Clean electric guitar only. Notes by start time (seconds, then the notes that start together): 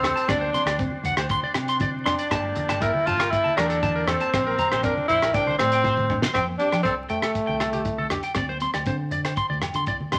0.03 A4
0.16 A5
0.28 D5
0.41 C5
0.54 C6
0.67 D5
1.06 F#5
1.18 C5
1.31 C6
1.44 D5
1.69 C6
1.81 D5
2.06 C6
2.19 D5
2.31 A5
2.56 muted clean electric guitar stroke
2.70 A5
2.82 A#4
3.07 A5
3.19 A#4
3.44 A5
3.57 A#4
3.70 A4
3.83 A5
3.96 A#4
4.08 A4
4.21 A5
4.34 C5
4.47 A#4
4.59 A#5
4.73 C5
4.85 A#4
5.10 C5
5.22 A#4
5.35 G5
5.47 C5
5.73 G5
5.86 C5
6.23 C5
6.36 G5
6.60 G4
6.73 G5
6.85 A4
7.10 G5
7.23 A4
7.47 G5
7.61 A4
7.73 G4
7.98 A4
8.11 G4
8.24 G5
8.37 D5
8.49 C5
8.62 C6
8.74 D5
8.87 C5
9.12 D5
9.25 C5
9.37 C6
9.50 D5
9.76 C6
9.88 D5
10.13 C6